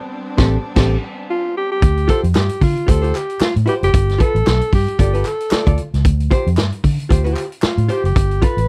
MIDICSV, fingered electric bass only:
0, 0, Header, 1, 3, 480
1, 0, Start_track
1, 0, Tempo, 528169
1, 1654, Time_signature, 4, 2, 24, 8
1, 7890, End_track
2, 0, Start_track
2, 0, Title_t, "Fingered electric bass"
2, 0, Program_c, 0, 33
2, 352, Note_on_c, 0, 33, 98
2, 509, Note_off_c, 0, 33, 0
2, 697, Note_on_c, 0, 33, 110
2, 864, Note_off_c, 0, 33, 0
2, 1659, Note_on_c, 0, 38, 108
2, 1866, Note_off_c, 0, 38, 0
2, 2031, Note_on_c, 0, 41, 85
2, 2122, Note_off_c, 0, 41, 0
2, 2142, Note_on_c, 0, 43, 90
2, 2256, Note_off_c, 0, 43, 0
2, 2376, Note_on_c, 0, 50, 99
2, 2492, Note_off_c, 0, 50, 0
2, 2621, Note_on_c, 0, 38, 94
2, 2827, Note_off_c, 0, 38, 0
2, 3237, Note_on_c, 0, 45, 89
2, 3326, Note_off_c, 0, 45, 0
2, 3478, Note_on_c, 0, 30, 98
2, 3566, Note_off_c, 0, 30, 0
2, 3580, Note_on_c, 0, 31, 110
2, 3787, Note_off_c, 0, 31, 0
2, 3951, Note_on_c, 0, 33, 94
2, 4042, Note_off_c, 0, 33, 0
2, 4063, Note_on_c, 0, 35, 95
2, 4177, Note_off_c, 0, 35, 0
2, 4297, Note_on_c, 0, 43, 103
2, 4413, Note_off_c, 0, 43, 0
2, 4535, Note_on_c, 0, 31, 95
2, 4745, Note_off_c, 0, 31, 0
2, 5151, Note_on_c, 0, 38, 95
2, 5243, Note_off_c, 0, 38, 0
2, 5396, Note_on_c, 0, 37, 84
2, 5485, Note_off_c, 0, 37, 0
2, 5499, Note_on_c, 0, 38, 110
2, 5707, Note_off_c, 0, 38, 0
2, 5876, Note_on_c, 0, 41, 96
2, 5966, Note_off_c, 0, 41, 0
2, 5971, Note_on_c, 0, 43, 97
2, 6090, Note_off_c, 0, 43, 0
2, 6221, Note_on_c, 0, 50, 97
2, 6336, Note_off_c, 0, 50, 0
2, 6460, Note_on_c, 0, 38, 83
2, 6667, Note_off_c, 0, 38, 0
2, 7066, Note_on_c, 0, 45, 86
2, 7160, Note_off_c, 0, 45, 0
2, 7304, Note_on_c, 0, 30, 89
2, 7399, Note_off_c, 0, 30, 0
2, 7416, Note_on_c, 0, 31, 106
2, 7626, Note_off_c, 0, 31, 0
2, 7787, Note_on_c, 0, 33, 76
2, 7881, Note_off_c, 0, 33, 0
2, 7890, End_track
3, 0, Start_track
3, 0, Title_t, "Muted fingered electric bass strokes"
3, 3095, Note_on_c, 9, 29, 46
3, 3186, Note_off_c, 9, 29, 0
3, 5019, Note_on_c, 9, 29, 51
3, 5110, Note_off_c, 9, 29, 0
3, 6938, Note_on_c, 9, 29, 47
3, 7029, Note_off_c, 9, 29, 0
3, 7890, End_track
0, 0, End_of_file